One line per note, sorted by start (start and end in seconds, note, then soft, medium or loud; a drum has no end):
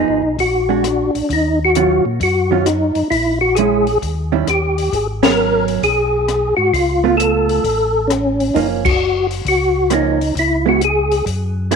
0.00 0.20 F3 medium
0.00 0.20 B3 medium
0.00 0.21 D#4 medium
0.00 0.37 D#4 medium
0.00 0.21 G#4 medium
0.08 0.22 G#1 medium
0.22 0.37 B1 medium
0.39 1.10 A#1 medium
0.39 1.11 F#4 medium
0.39 kick soft
0.39 open hi-hat soft
0.69 0.83 G#3 medium
0.69 0.83 D4 medium
0.69 0.83 F#4 medium
0.84 1.33 D4 medium
0.84 cross-stick medium
0.84 closed hi-hat soft
1.15 1.22 A#1 soft
1.15 open hi-hat soft
1.29 2.01 D#2 medium
1.29 1.59 D#4 medium
1.29 kick soft
1.29 open hi-hat soft
1.65 2.05 F#4 loud
1.75 2.03 D#3 medium
1.75 2.03 F#3 medium
1.75 2.03 C#4 medium
1.75 2.03 F4 medium
1.75 closed hi-hat medium
2.05 2.20 A#2 medium
2.20 2.92 F#2 medium
2.20 2.69 F#4 medium
2.20 kick soft
2.20 open hi-hat soft
2.51 2.65 D#3 medium
2.51 2.65 F#3 medium
2.51 2.65 C#4 medium
2.51 2.65 F4 medium
2.66 3.08 D#4 medium
2.66 cross-stick medium
2.66 closed hi-hat medium
2.95 3.03 F#2 soft
2.95 open hi-hat soft
3.10 3.98 A#1 medium
3.10 3.39 E4 medium
3.10 kick soft
3.10 open hi-hat soft
3.41 3.57 F#4 medium
3.55 3.85 G#3 medium
3.55 3.85 C#4 medium
3.55 3.98 G#4 loud
3.55 closed hi-hat medium
3.60 3.85 E4 medium
3.87 open hi-hat soft
4.02 4.44 D#2 medium
4.02 kick soft
4.02 open hi-hat soft
4.32 4.46 D#3 medium
4.32 4.46 G3 medium
4.32 4.46 C#4 medium
4.32 4.47 E4 medium
4.47 4.90 D#2 medium
4.47 4.95 G4 medium
4.47 cross-stick medium
4.47 closed hi-hat medium
4.78 open hi-hat soft
4.93 5.79 G#1 medium
4.93 5.07 G#4 medium
4.93 kick soft
4.93 open hi-hat soft
5.23 5.80 F#3 medium
5.23 5.80 B3 medium
5.23 5.81 C#4 medium
5.23 5.66 A#4 loud
5.23 snare medium
5.23 ride medium
5.68 open hi-hat soft
5.82 6.54 B1 medium
5.82 6.55 G#4 medium
5.82 kick soft
5.82 open hi-hat soft
6.28 cross-stick medium
6.28 closed hi-hat medium
6.57 6.72 G#2 medium
6.57 6.74 F#4 loud
6.73 7.60 C#2 medium
6.73 7.16 F4 medium
6.73 kick soft
6.73 open hi-hat soft
7.04 7.61 A3 medium
7.04 7.62 B3 medium
7.04 7.62 F4 medium
7.17 8.12 A4 loud
7.17 closed hi-hat medium
7.49 open hi-hat soft
7.64 8.51 A1 medium
7.64 kick soft
7.64 open hi-hat soft
8.07 8.55 C#4 medium
8.07 cross-stick medium
8.07 closed hi-hat soft
8.40 open hi-hat soft
8.54 9.42 F#1 medium
8.54 8.82 F3 medium
8.54 8.82 A#3 medium
8.54 8.83 C#4 medium
8.54 8.68 D#4 medium
8.54 kick soft
8.54 open hi-hat soft
8.85 9.27 F#4 medium
8.85 kick medium
8.85 crash medium
9.31 open hi-hat soft
9.45 10.32 C#2 medium
9.45 9.94 F#4 medium
9.45 kick soft
9.45 open hi-hat soft
9.90 10.18 F3 medium
9.90 10.18 A#3 medium
9.90 10.18 C#4 medium
9.90 10.34 D#4 medium
9.90 cross-stick medium
9.90 closed hi-hat medium
10.21 open hi-hat soft
10.35 11.22 C#2 medium
10.35 10.65 E4 medium
10.35 kick soft
10.35 open hi-hat medium
10.66 10.80 G#3 medium
10.66 10.80 B3 medium
10.66 10.80 E4 medium
10.66 10.82 F#4 medium
10.81 11.25 G#4 medium
10.81 closed hi-hat medium
11.12 open hi-hat soft
11.26 11.76 F#2 medium
11.26 kick soft
11.26 open hi-hat soft
11.71 11.76 F#3 medium
11.71 11.76 A#3 medium
11.71 11.76 E4 medium
11.71 cross-stick medium
11.71 closed hi-hat medium